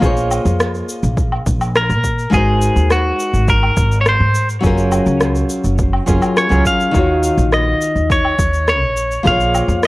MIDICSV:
0, 0, Header, 1, 5, 480
1, 0, Start_track
1, 0, Tempo, 576923
1, 17, Time_signature, 4, 2, 24, 8
1, 8213, End_track
2, 0, Start_track
2, 0, Title_t, "Clean electric guitar"
2, 0, Program_c, 0, 27
2, 1469, Note_on_c, 0, 70, 84
2, 1947, Note_on_c, 0, 68, 90
2, 1957, Note_off_c, 0, 70, 0
2, 2425, Note_off_c, 0, 68, 0
2, 2428, Note_on_c, 0, 66, 86
2, 2909, Note_on_c, 0, 70, 105
2, 2916, Note_off_c, 0, 66, 0
2, 3333, Note_off_c, 0, 70, 0
2, 3336, Note_on_c, 0, 73, 68
2, 3385, Note_off_c, 0, 73, 0
2, 3399, Note_on_c, 0, 72, 94
2, 3724, Note_off_c, 0, 72, 0
2, 5308, Note_on_c, 0, 73, 95
2, 5544, Note_off_c, 0, 73, 0
2, 5547, Note_on_c, 0, 77, 95
2, 6267, Note_off_c, 0, 77, 0
2, 6270, Note_on_c, 0, 75, 96
2, 6749, Note_off_c, 0, 75, 0
2, 6753, Note_on_c, 0, 73, 104
2, 7222, Note_off_c, 0, 73, 0
2, 7232, Note_on_c, 0, 73, 90
2, 7671, Note_off_c, 0, 73, 0
2, 7714, Note_on_c, 0, 77, 105
2, 8194, Note_off_c, 0, 77, 0
2, 8213, End_track
3, 0, Start_track
3, 0, Title_t, "Nylon-string guitar"
3, 0, Program_c, 1, 24
3, 0, Note_on_c, 1, 58, 83
3, 6, Note_on_c, 1, 65, 78
3, 17, Note_on_c, 1, 68, 78
3, 30, Note_on_c, 1, 72, 79
3, 44, Note_on_c, 1, 73, 99
3, 1177, Note_off_c, 1, 58, 0
3, 1183, Note_off_c, 1, 65, 0
3, 1188, Note_off_c, 1, 68, 0
3, 1195, Note_off_c, 1, 72, 0
3, 1201, Note_off_c, 1, 73, 0
3, 1912, Note_on_c, 1, 56, 90
3, 1921, Note_on_c, 1, 63, 81
3, 1929, Note_on_c, 1, 77, 80
3, 1939, Note_on_c, 1, 66, 84
3, 1949, Note_on_c, 1, 70, 86
3, 1956, Note_off_c, 1, 77, 0
3, 1960, Note_on_c, 1, 72, 105
3, 3095, Note_off_c, 1, 56, 0
3, 3100, Note_off_c, 1, 63, 0
3, 3109, Note_off_c, 1, 66, 0
3, 3114, Note_off_c, 1, 70, 0
3, 3119, Note_off_c, 1, 72, 0
3, 3831, Note_on_c, 1, 54, 88
3, 3844, Note_on_c, 1, 61, 82
3, 3855, Note_on_c, 1, 65, 82
3, 3867, Note_on_c, 1, 68, 82
3, 3879, Note_on_c, 1, 70, 100
3, 5015, Note_off_c, 1, 54, 0
3, 5021, Note_off_c, 1, 61, 0
3, 5027, Note_off_c, 1, 65, 0
3, 5033, Note_off_c, 1, 68, 0
3, 5039, Note_off_c, 1, 70, 0
3, 5044, Note_on_c, 1, 54, 79
3, 5048, Note_on_c, 1, 61, 69
3, 5053, Note_on_c, 1, 65, 76
3, 5060, Note_on_c, 1, 68, 75
3, 5064, Note_on_c, 1, 70, 89
3, 5382, Note_off_c, 1, 54, 0
3, 5383, Note_off_c, 1, 61, 0
3, 5386, Note_off_c, 1, 65, 0
3, 5390, Note_off_c, 1, 68, 0
3, 5392, Note_off_c, 1, 70, 0
3, 5400, Note_on_c, 1, 54, 79
3, 5406, Note_on_c, 1, 61, 75
3, 5412, Note_on_c, 1, 65, 76
3, 5417, Note_on_c, 1, 68, 80
3, 5421, Note_on_c, 1, 70, 91
3, 5739, Note_off_c, 1, 54, 0
3, 5742, Note_off_c, 1, 61, 0
3, 5745, Note_off_c, 1, 65, 0
3, 5748, Note_off_c, 1, 68, 0
3, 5750, Note_off_c, 1, 70, 0
3, 5752, Note_on_c, 1, 51, 91
3, 5765, Note_on_c, 1, 63, 85
3, 5776, Note_on_c, 1, 65, 80
3, 5787, Note_on_c, 1, 66, 80
3, 5800, Note_on_c, 1, 73, 96
3, 6935, Note_off_c, 1, 51, 0
3, 6942, Note_off_c, 1, 63, 0
3, 6948, Note_off_c, 1, 65, 0
3, 6953, Note_off_c, 1, 66, 0
3, 6960, Note_off_c, 1, 73, 0
3, 7678, Note_on_c, 1, 58, 89
3, 7688, Note_on_c, 1, 65, 86
3, 7699, Note_on_c, 1, 68, 78
3, 7712, Note_on_c, 1, 72, 86
3, 7725, Note_on_c, 1, 73, 101
3, 8213, Note_off_c, 1, 58, 0
3, 8213, Note_off_c, 1, 65, 0
3, 8213, Note_off_c, 1, 68, 0
3, 8213, Note_off_c, 1, 72, 0
3, 8213, Note_off_c, 1, 73, 0
3, 8213, End_track
4, 0, Start_track
4, 0, Title_t, "Upright bass"
4, 0, Program_c, 2, 32
4, 17, Note_on_c, 2, 34, 92
4, 304, Note_off_c, 2, 34, 0
4, 377, Note_on_c, 2, 41, 82
4, 664, Note_off_c, 2, 41, 0
4, 859, Note_on_c, 2, 34, 83
4, 1145, Note_off_c, 2, 34, 0
4, 1218, Note_on_c, 2, 34, 94
4, 1577, Note_on_c, 2, 46, 75
4, 1589, Note_off_c, 2, 34, 0
4, 1864, Note_off_c, 2, 46, 0
4, 1936, Note_on_c, 2, 32, 86
4, 2223, Note_off_c, 2, 32, 0
4, 2297, Note_on_c, 2, 39, 79
4, 2584, Note_off_c, 2, 39, 0
4, 2775, Note_on_c, 2, 32, 79
4, 3063, Note_off_c, 2, 32, 0
4, 3136, Note_on_c, 2, 32, 88
4, 3495, Note_on_c, 2, 44, 75
4, 3507, Note_off_c, 2, 32, 0
4, 3783, Note_off_c, 2, 44, 0
4, 3858, Note_on_c, 2, 30, 90
4, 4144, Note_off_c, 2, 30, 0
4, 4213, Note_on_c, 2, 37, 84
4, 4502, Note_off_c, 2, 37, 0
4, 4695, Note_on_c, 2, 30, 80
4, 4983, Note_off_c, 2, 30, 0
4, 5058, Note_on_c, 2, 30, 82
4, 5132, Note_off_c, 2, 30, 0
4, 5417, Note_on_c, 2, 37, 73
4, 5491, Note_off_c, 2, 37, 0
4, 5777, Note_on_c, 2, 39, 90
4, 6064, Note_off_c, 2, 39, 0
4, 6137, Note_on_c, 2, 34, 85
4, 6424, Note_off_c, 2, 34, 0
4, 6618, Note_on_c, 2, 39, 77
4, 6904, Note_off_c, 2, 39, 0
4, 6978, Note_on_c, 2, 39, 93
4, 7336, Note_off_c, 2, 39, 0
4, 7336, Note_on_c, 2, 34, 81
4, 7624, Note_off_c, 2, 34, 0
4, 7698, Note_on_c, 2, 34, 97
4, 7984, Note_off_c, 2, 34, 0
4, 8055, Note_on_c, 2, 41, 86
4, 8213, Note_off_c, 2, 41, 0
4, 8213, End_track
5, 0, Start_track
5, 0, Title_t, "Drums"
5, 17, Note_on_c, 9, 36, 109
5, 21, Note_on_c, 9, 82, 41
5, 100, Note_off_c, 9, 36, 0
5, 104, Note_off_c, 9, 82, 0
5, 140, Note_on_c, 9, 82, 30
5, 223, Note_off_c, 9, 82, 0
5, 259, Note_on_c, 9, 77, 59
5, 259, Note_on_c, 9, 82, 79
5, 342, Note_off_c, 9, 77, 0
5, 342, Note_off_c, 9, 82, 0
5, 379, Note_on_c, 9, 82, 31
5, 462, Note_off_c, 9, 82, 0
5, 501, Note_on_c, 9, 37, 97
5, 501, Note_on_c, 9, 82, 44
5, 584, Note_off_c, 9, 37, 0
5, 584, Note_off_c, 9, 82, 0
5, 621, Note_on_c, 9, 82, 29
5, 704, Note_off_c, 9, 82, 0
5, 742, Note_on_c, 9, 82, 79
5, 825, Note_off_c, 9, 82, 0
5, 861, Note_on_c, 9, 82, 33
5, 944, Note_off_c, 9, 82, 0
5, 977, Note_on_c, 9, 36, 119
5, 980, Note_on_c, 9, 82, 44
5, 1060, Note_off_c, 9, 36, 0
5, 1063, Note_off_c, 9, 82, 0
5, 1101, Note_on_c, 9, 77, 57
5, 1184, Note_off_c, 9, 77, 0
5, 1218, Note_on_c, 9, 36, 101
5, 1219, Note_on_c, 9, 82, 70
5, 1301, Note_off_c, 9, 36, 0
5, 1303, Note_off_c, 9, 82, 0
5, 1340, Note_on_c, 9, 77, 65
5, 1340, Note_on_c, 9, 82, 29
5, 1423, Note_off_c, 9, 77, 0
5, 1423, Note_off_c, 9, 82, 0
5, 1460, Note_on_c, 9, 37, 101
5, 1460, Note_on_c, 9, 82, 40
5, 1543, Note_off_c, 9, 37, 0
5, 1544, Note_off_c, 9, 82, 0
5, 1579, Note_on_c, 9, 37, 28
5, 1579, Note_on_c, 9, 82, 29
5, 1662, Note_off_c, 9, 37, 0
5, 1662, Note_off_c, 9, 82, 0
5, 1697, Note_on_c, 9, 36, 57
5, 1698, Note_on_c, 9, 82, 74
5, 1780, Note_off_c, 9, 36, 0
5, 1781, Note_off_c, 9, 82, 0
5, 1820, Note_on_c, 9, 82, 33
5, 1903, Note_off_c, 9, 82, 0
5, 1936, Note_on_c, 9, 36, 113
5, 1938, Note_on_c, 9, 82, 44
5, 2020, Note_off_c, 9, 36, 0
5, 2022, Note_off_c, 9, 82, 0
5, 2177, Note_on_c, 9, 82, 85
5, 2261, Note_off_c, 9, 82, 0
5, 2299, Note_on_c, 9, 82, 32
5, 2382, Note_off_c, 9, 82, 0
5, 2417, Note_on_c, 9, 37, 95
5, 2417, Note_on_c, 9, 82, 47
5, 2500, Note_off_c, 9, 37, 0
5, 2501, Note_off_c, 9, 82, 0
5, 2660, Note_on_c, 9, 82, 76
5, 2743, Note_off_c, 9, 82, 0
5, 2778, Note_on_c, 9, 82, 34
5, 2861, Note_off_c, 9, 82, 0
5, 2897, Note_on_c, 9, 36, 124
5, 2897, Note_on_c, 9, 82, 44
5, 2980, Note_off_c, 9, 36, 0
5, 2980, Note_off_c, 9, 82, 0
5, 3020, Note_on_c, 9, 77, 59
5, 3103, Note_off_c, 9, 77, 0
5, 3136, Note_on_c, 9, 82, 72
5, 3137, Note_on_c, 9, 36, 106
5, 3219, Note_off_c, 9, 82, 0
5, 3220, Note_off_c, 9, 36, 0
5, 3259, Note_on_c, 9, 82, 33
5, 3342, Note_off_c, 9, 82, 0
5, 3377, Note_on_c, 9, 37, 88
5, 3377, Note_on_c, 9, 82, 39
5, 3460, Note_off_c, 9, 37, 0
5, 3460, Note_off_c, 9, 82, 0
5, 3616, Note_on_c, 9, 82, 78
5, 3700, Note_off_c, 9, 82, 0
5, 3738, Note_on_c, 9, 82, 34
5, 3821, Note_off_c, 9, 82, 0
5, 3856, Note_on_c, 9, 82, 41
5, 3857, Note_on_c, 9, 36, 121
5, 3939, Note_off_c, 9, 82, 0
5, 3941, Note_off_c, 9, 36, 0
5, 3974, Note_on_c, 9, 82, 31
5, 4057, Note_off_c, 9, 82, 0
5, 4093, Note_on_c, 9, 77, 58
5, 4093, Note_on_c, 9, 82, 85
5, 4176, Note_off_c, 9, 77, 0
5, 4176, Note_off_c, 9, 82, 0
5, 4212, Note_on_c, 9, 82, 32
5, 4295, Note_off_c, 9, 82, 0
5, 4332, Note_on_c, 9, 37, 89
5, 4332, Note_on_c, 9, 82, 44
5, 4415, Note_off_c, 9, 37, 0
5, 4415, Note_off_c, 9, 82, 0
5, 4453, Note_on_c, 9, 82, 30
5, 4537, Note_off_c, 9, 82, 0
5, 4573, Note_on_c, 9, 82, 77
5, 4657, Note_off_c, 9, 82, 0
5, 4694, Note_on_c, 9, 82, 33
5, 4778, Note_off_c, 9, 82, 0
5, 4814, Note_on_c, 9, 82, 46
5, 4817, Note_on_c, 9, 36, 113
5, 4897, Note_off_c, 9, 82, 0
5, 4900, Note_off_c, 9, 36, 0
5, 4937, Note_on_c, 9, 77, 56
5, 5020, Note_off_c, 9, 77, 0
5, 5055, Note_on_c, 9, 82, 71
5, 5057, Note_on_c, 9, 36, 102
5, 5138, Note_off_c, 9, 82, 0
5, 5140, Note_off_c, 9, 36, 0
5, 5177, Note_on_c, 9, 77, 68
5, 5177, Note_on_c, 9, 82, 33
5, 5260, Note_off_c, 9, 77, 0
5, 5260, Note_off_c, 9, 82, 0
5, 5299, Note_on_c, 9, 37, 86
5, 5299, Note_on_c, 9, 82, 43
5, 5382, Note_off_c, 9, 37, 0
5, 5382, Note_off_c, 9, 82, 0
5, 5418, Note_on_c, 9, 37, 26
5, 5419, Note_on_c, 9, 82, 30
5, 5502, Note_off_c, 9, 37, 0
5, 5502, Note_off_c, 9, 82, 0
5, 5537, Note_on_c, 9, 36, 60
5, 5538, Note_on_c, 9, 82, 75
5, 5620, Note_off_c, 9, 36, 0
5, 5621, Note_off_c, 9, 82, 0
5, 5660, Note_on_c, 9, 82, 34
5, 5743, Note_off_c, 9, 82, 0
5, 5777, Note_on_c, 9, 36, 106
5, 5778, Note_on_c, 9, 82, 43
5, 5860, Note_off_c, 9, 36, 0
5, 5862, Note_off_c, 9, 82, 0
5, 6019, Note_on_c, 9, 82, 83
5, 6102, Note_off_c, 9, 82, 0
5, 6141, Note_on_c, 9, 82, 31
5, 6224, Note_off_c, 9, 82, 0
5, 6260, Note_on_c, 9, 37, 94
5, 6260, Note_on_c, 9, 82, 41
5, 6343, Note_off_c, 9, 37, 0
5, 6344, Note_off_c, 9, 82, 0
5, 6500, Note_on_c, 9, 82, 78
5, 6583, Note_off_c, 9, 82, 0
5, 6621, Note_on_c, 9, 82, 32
5, 6704, Note_off_c, 9, 82, 0
5, 6737, Note_on_c, 9, 36, 118
5, 6743, Note_on_c, 9, 82, 42
5, 6821, Note_off_c, 9, 36, 0
5, 6826, Note_off_c, 9, 82, 0
5, 6861, Note_on_c, 9, 77, 57
5, 6944, Note_off_c, 9, 77, 0
5, 6978, Note_on_c, 9, 36, 97
5, 6980, Note_on_c, 9, 82, 69
5, 7061, Note_off_c, 9, 36, 0
5, 7063, Note_off_c, 9, 82, 0
5, 7101, Note_on_c, 9, 82, 29
5, 7184, Note_off_c, 9, 82, 0
5, 7221, Note_on_c, 9, 37, 84
5, 7221, Note_on_c, 9, 82, 40
5, 7304, Note_off_c, 9, 37, 0
5, 7304, Note_off_c, 9, 82, 0
5, 7461, Note_on_c, 9, 82, 76
5, 7544, Note_off_c, 9, 82, 0
5, 7581, Note_on_c, 9, 82, 33
5, 7664, Note_off_c, 9, 82, 0
5, 7698, Note_on_c, 9, 36, 108
5, 7699, Note_on_c, 9, 82, 41
5, 7782, Note_off_c, 9, 36, 0
5, 7783, Note_off_c, 9, 82, 0
5, 7821, Note_on_c, 9, 82, 29
5, 7904, Note_off_c, 9, 82, 0
5, 7942, Note_on_c, 9, 77, 64
5, 7942, Note_on_c, 9, 82, 79
5, 8025, Note_off_c, 9, 77, 0
5, 8025, Note_off_c, 9, 82, 0
5, 8062, Note_on_c, 9, 82, 30
5, 8145, Note_off_c, 9, 82, 0
5, 8180, Note_on_c, 9, 37, 91
5, 8180, Note_on_c, 9, 82, 42
5, 8213, Note_off_c, 9, 37, 0
5, 8213, Note_off_c, 9, 82, 0
5, 8213, End_track
0, 0, End_of_file